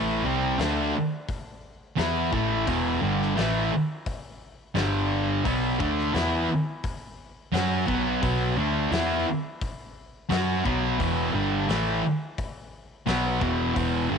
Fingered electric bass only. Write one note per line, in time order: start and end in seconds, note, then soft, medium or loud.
0.00 0.22 A1 medium
0.24 0.57 C2 medium
0.58 0.91 D2 loud
1.97 2.30 E2 medium
2.32 2.65 A1 loud
2.68 3.00 E1 medium
3.03 3.35 G1 medium
3.37 3.69 A1 medium
4.75 5.41 G1 medium
5.45 5.77 B1 medium
5.80 6.12 D2 medium
6.14 6.47 E2 loud
7.52 7.85 F#2 medium
7.89 8.20 B1 medium
8.23 8.55 B1 medium
8.57 8.89 D2 medium
8.91 9.23 E2 medium
10.30 10.62 F#2 medium
10.66 10.97 B1 loud
11.00 11.32 E1 medium
11.34 11.66 G1 medium
11.69 12.01 A1 medium
13.07 13.39 B1 medium
13.42 13.74 E1 medium
13.76 14.08 E1 medium
14.11 14.18 G1 medium